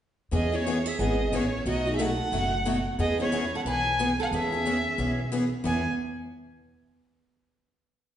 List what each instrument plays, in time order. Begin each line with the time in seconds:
0.31 upright bass E2, steel-string acoustic guitar E3 B3 C#4 G#4, violin D#5
0.52 steel-string acoustic guitar B3 C#4 E4 G#4, violin C#5
0.67 steel-string acoustic guitar E3 B3 C#4 G#4
0.86 steel-string acoustic guitar G#4, violin E5
0.99 upright bass G#1, steel-string acoustic guitar E3 B3 C#4 G#4, violin D#5
1.32 upright bass A1, steel-string acoustic guitar E3 B3 C#4 E4 G#4, violin C#5
1.66 upright bass B1, steel-string acoustic guitar B2 F#3 A3 D#4 F#4, violin D#5
1.85 steel-string acoustic guitar A3 D#4 F#4
1.94 steel-string acoustic guitar G#4, violin E5
1.99 steel-string acoustic guitar B2 F#3 A3 D#4 F#4 A4, violin F#5
2.32 upright bass F#1, steel-string acoustic guitar B2 F#3 A3 D#4 F#4
2.65 steel-string acoustic guitar B2 F#3 A3 D#4 F#4
2.98 upright bass E2, steel-string acoustic guitar E3 B3 C#4 G#4, violin D#5
3.18 steel-string acoustic guitar B3 C#4 E4 G#4, violin C#5
3.32 steel-string acoustic guitar E3 B3 C#4 G#4
3.55 steel-string acoustic guitar A4, violin F#5
3.65 upright bass B1, steel-string acoustic guitar E3 B3 C#4 G#4 B4, violin G#5
3.99 steel-string acoustic guitar E3 B3 C#4 G#4
4.20 steel-string acoustic guitar A4, violin F#5
4.31 upright bass E2, steel-string acoustic guitar E3 B3 C#4 G#4
4.36 violin E5
4.52 steel-string acoustic guitar B3 C#4 G#4
4.66 steel-string acoustic guitar E3 B3 C#4 G#4
4.98 upright bass B1, steel-string acoustic guitar E3 B3 C#4 G#4
5.32 steel-string acoustic guitar E3 B3 C#4 G#4
5.64 upright bass E2, steel-string acoustic guitar E3 B3 C#4 G#4, violin G#5